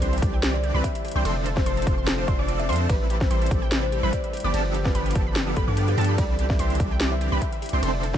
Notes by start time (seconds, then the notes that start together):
Already playing: D3 G3 C4 E4 B4
0.02 C2 E3 C4 D4 G4 C5 C6, closed hi-hat
0.13 E5, closed hi-hat
0.18 closed hi-hat
0.22 C2 E3 C4 D4 G4 D5 D6, kick, closed hi-hat
0.33 G5
0.43 G4, snare, closed hi-hat
0.54 C5 D5
0.64 G4, closed hi-hat
0.74 C2 E3 C4 D4 G4 B4 D5 B5
0.84 G4 E5, kick, closed hi-hat
0.95 E5, closed hi-hat
1.05 G4, closed hi-hat, open hi-hat
1.11 closed hi-hat
1.16 C2 E3 C4 D4 G4 C5 G5 C6
1.25 F1 F3 A3 C4 D4 F4 A4 C5 C6, closed hi-hat, ride
1.36 D5
1.46 A4, closed hi-hat
1.57 C5 F5, kick, snare
1.66 F1 F3 C4 D4 A4 C5 C6, closed hi-hat
1.77 A5, closed hi-hat
1.82 closed hi-hat
1.87 F1 F3 C4 D4 A4 C5 C6, kick, closed hi-hat
1.98 C6
2.07 A4, snare, closed hi-hat
2.18 D5
2.28 F1 F3 C4 D4 A4 C5 D5 F5 C6, kick, closed hi-hat
2.39 F1 F3 C4 D4 A4 D5 D6
2.48 D5, closed hi-hat
2.59 D5 E5, closed hi-hat
2.69 F2 F3 C4 D4 A4 C5 F5 C6, closed hi-hat, open hi-hat
2.76 closed hi-hat
2.80 A4
2.89 A1 C3 G3 C4 E4 G4 A4 B4 B5, kick, closed hi-hat, ride
3.00 B4
3.10 G4, closed hi-hat
3.21 C5, kick, snare
3.30 A1 G3 C4 E4 G4 A4 C5 C6, closed hi-hat
3.41 E5, closed hi-hat
3.46 closed hi-hat
3.51 A1 G3 C4 E4 G4 A4 D6, kick, closed hi-hat
3.62 G5
3.72 G4, snare, closed hi-hat
3.83 B4 C5
3.92 G4, closed hi-hat
4.03 A1 G3 C4 E4 A4 B4 C5 B5
4.13 G4 D5, kick, closed hi-hat
4.24 E5, closed hi-hat
4.33 D3 F3 F4 G4, closed hi-hat, open hi-hat
4.40 closed hi-hat
4.44 G1 F3 B3 D4 G4 D5 B5 D6
4.54 G1 F3 B3 D4 G4 A4 A5, closed hi-hat, ride
4.65 D5
4.74 G4, closed hi-hat
4.85 B4 F5, kick, snare
4.95 G1 F3 B3 D4 G4 B4 B5, closed hi-hat
5.06 G5, closed hi-hat
5.11 closed hi-hat
5.15 G1 F3 B3 D4 G4 A4 A5, kick, closed hi-hat
5.27 B5
5.36 G4, snare, closed hi-hat
5.47 D5
5.56 G1 F3 B3 D4 G4 A4 B4 B5, kick, closed hi-hat
5.68 G2 F3 B3 D4 G4 D5 F5 D6
5.77 G4, closed hi-hat
5.88 G4 G5, closed hi-hat
5.98 G2 F3 B3 D4 G4 A4 A5, closed hi-hat, open hi-hat
6.04 closed hi-hat
6.09 B5
6.18 C2 D3 G3 C4 E4 G4 D5 B5, kick, closed hi-hat, ride
6.29 C5
6.39 G4, closed hi-hat
6.50 D5 E5, kick, snare
6.59 C2 E3 C4 D4 G4 C5 C6, closed hi-hat
6.70 E5, closed hi-hat
6.75 closed hi-hat
6.80 C2 E3 C4 D4 G4 D5 D6, kick, closed hi-hat
6.91 G5
7.00 G4, snare, closed hi-hat
7.12 C5 E5
7.21 G4, closed hi-hat
7.32 C2 E3 C4 D4 G4 B4 D5 B5
7.42 G4 E5, kick, closed hi-hat
7.53 E5, closed hi-hat
7.62 G4, closed hi-hat, open hi-hat
7.69 closed hi-hat
7.73 C2 E3 C4 D4 G4 C5 G5 C6
7.83 F1 D3 F3 A3 C4 D4 F4 A4 C5 C6, closed hi-hat, ride
7.94 D5
8.03 A4, closed hi-hat
8.14 D5 F5, kick, snare